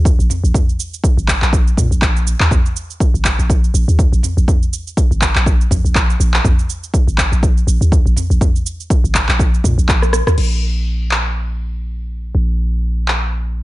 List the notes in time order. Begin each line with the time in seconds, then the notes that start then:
Already playing: D#2
0.05 kick, shaker
0.19 A#1, shaker
0.30 mid tom, shaker
0.44 A#1, shaker
0.54 kick, mid tom, shaker
0.69 shaker
0.80 shaker
0.94 shaker
1.04 kick, shaker
1.17 G#1, shaker
1.28 kick, clap, shaker
1.42 A#1, clap, shaker
1.53 kick, shaker
1.67 shaker
1.77 A#2, kick, mid tom, shaker
1.91 A#1, shaker
2.02 kick, clap, shaker
2.17 shaker
2.27 shaker
2.40 D#2, clap, shaker
2.51 A#1, kick, mid tom, shaker
2.66 shaker
2.76 shaker
2.90 shaker
3.00 kick, shaker
3.14 G#1, shaker
3.25 kick, clap, shaker
3.39 A#1, shaker
3.50 kick, shaker
3.64 shaker
3.74 A#1, shaker
3.88 D#2, shaker
3.99 kick, shaker
4.12 A#1, shaker
4.23 mid tom, shaker
4.37 A#1, shaker
4.48 kick, mid tom, shaker
4.63 shaker
4.73 shaker
4.87 shaker
4.97 kick, shaker
5.11 G#1, shaker
5.22 kick, clap, shaker
5.36 A#1, clap, shaker
5.46 kick, shaker
5.61 shaker
5.71 A#1, kick, mid tom, shaker
5.85 A#1, shaker
5.95 kick, clap, shaker
6.10 shaker
6.20 A#1, shaker
6.34 clap, shaker
6.44 A#1, kick, mid tom, shaker
6.59 shaker
6.70 shaker
6.84 shaker
6.94 kick, shaker
7.07 G#1, shaker
7.18 kick, clap, shaker
7.32 A#1, shaker
7.43 kick, shaker
7.57 shaker
7.67 A#1, shaker
7.81 D#2, shaker
7.92 kick, shaker
8.06 A#1, shaker
8.16 mid tom, shaker
8.30 A#1, shaker
8.41 kick, mid tom, shaker
8.56 shaker
8.66 shaker
8.80 shaker
8.90 kick, shaker
9.04 G#1, shaker
9.15 kick, clap, shaker
9.29 A#1, clap, shaker
9.39 kick, shaker
9.54 shaker
9.64 A#2, kick, mid tom, shaker
9.78 A#1, shaker
9.89 kick, clap, shaker
10.02 cross-stick, shaker
10.13 cross-stick, shaker
10.27 D#2, cross-stick, shaker
10.38 A#1, crash
11.11 clap
12.35 A#1
13.08 clap